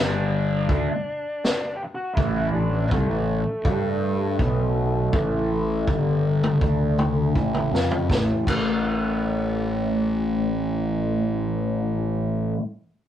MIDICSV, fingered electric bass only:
0, 0, Header, 1, 2, 480
1, 0, Start_track
1, 0, Tempo, 742574
1, 1395, Time_signature, 4, 2, 24, 8
1, 8456, End_track
2, 0, Start_track
2, 0, Title_t, "Fingered electric bass"
2, 0, Program_c, 0, 33
2, 0, Note_on_c, 0, 31, 82
2, 412, Note_off_c, 0, 31, 0
2, 446, Note_on_c, 0, 38, 78
2, 553, Note_off_c, 0, 38, 0
2, 1400, Note_on_c, 0, 33, 84
2, 1621, Note_off_c, 0, 33, 0
2, 1638, Note_on_c, 0, 33, 66
2, 1859, Note_off_c, 0, 33, 0
2, 1884, Note_on_c, 0, 36, 84
2, 1991, Note_off_c, 0, 36, 0
2, 2001, Note_on_c, 0, 33, 74
2, 2221, Note_off_c, 0, 33, 0
2, 2356, Note_on_c, 0, 43, 84
2, 2809, Note_off_c, 0, 43, 0
2, 2837, Note_on_c, 0, 35, 83
2, 3289, Note_off_c, 0, 35, 0
2, 3312, Note_on_c, 0, 33, 80
2, 3767, Note_off_c, 0, 33, 0
2, 3793, Note_on_c, 0, 31, 83
2, 4247, Note_off_c, 0, 31, 0
2, 4273, Note_on_c, 0, 38, 74
2, 4727, Note_off_c, 0, 38, 0
2, 4753, Note_on_c, 0, 33, 73
2, 4976, Note_off_c, 0, 33, 0
2, 4988, Note_on_c, 0, 41, 60
2, 5214, Note_off_c, 0, 41, 0
2, 5231, Note_on_c, 0, 33, 80
2, 5366, Note_off_c, 0, 33, 0
2, 5472, Note_on_c, 0, 33, 82
2, 8097, Note_off_c, 0, 33, 0
2, 8456, End_track
0, 0, End_of_file